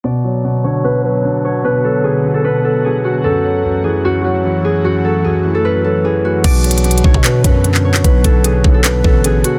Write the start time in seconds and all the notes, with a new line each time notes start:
0.04 B2 D3 B3 F#4 D5
0.24 F#3
0.44 B2
0.64 D3 C#5
0.84 B2 B4
1.04 F#3 B4
1.24 D3
1.45 C#5
1.64 B2 B4
1.84 F#3 A4
2.04 B2 G#4
2.24 D3
2.34 A4
2.44 B2 B4
2.64 F#3 A4
2.84 D3 G#4
3.04 F#4
3.24 F#2 E3 A3 A4
3.44 F#3
3.64 F#2
3.84 E3 G#4
4.04 F#2 F#4
4.24 F#3 F#4
4.44 E3
4.65 G#4
4.84 F#2 F#4
5.04 F#3 A4
5.24 F#2 G#4
5.44 E3
5.55 A4
5.65 F#2 B4
5.84 F#3 A4
6.04 E3 G#4
6.25 F#4
6.44 B1 B2 D3 B3 F#4 D5, kick, closed hi-hat, crash
6.64 F#3, closed hi-hat
6.71 closed hi-hat
6.78 closed hi-hat
6.84 B2, closed hi-hat
6.91 closed hi-hat
6.98 closed hi-hat
7.04 B1 D3 C#5, kick
7.14 B2, kick
7.24 B2 B4, clap, closed hi-hat
7.44 F#2 F#3 B4, kick, closed hi-hat
7.64 D3, closed hi-hat
7.74 clap
7.85 C#5
7.94 clap
8.04 B1 B2 B4, kick, closed hi-hat
8.24 B1 F#3 A4, kick, closed hi-hat
8.44 B2 G#4, closed hi-hat
8.64 B1 D3, kick
8.74 A4
8.84 B2 B4, clap, closed hi-hat
9.04 A1 F#3 A4, kick
9.24 D3 G#4, closed hi-hat
9.44 F#4, closed hi-hat